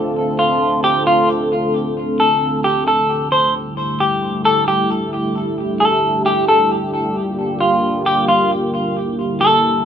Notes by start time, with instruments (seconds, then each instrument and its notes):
Already playing: analog synth pad D3 A3 C4 F4 A4
0.39 clean electric guitar F4
0.84 clean electric guitar G4
1.07 clean electric guitar F4
2.20 clean electric guitar A4
2.64 clean electric guitar G4
2.88 clean electric guitar A4
3.32 clean electric guitar C5
3.55 analog synth pad G3 A3 E4 G4
4.00 clean electric guitar G4
4.45 clean electric guitar A4
4.68 clean electric guitar G4
5.80 clean electric guitar A4
6.26 clean electric guitar G4
6.48 clean electric guitar A4
7.15 analog synth pad D3 A#3 F4
7.61 clean electric guitar F4
8.06 clean electric guitar G4
8.28 clean electric guitar F4
8.96 analog synth pad E4
9.41 clean electric guitar A4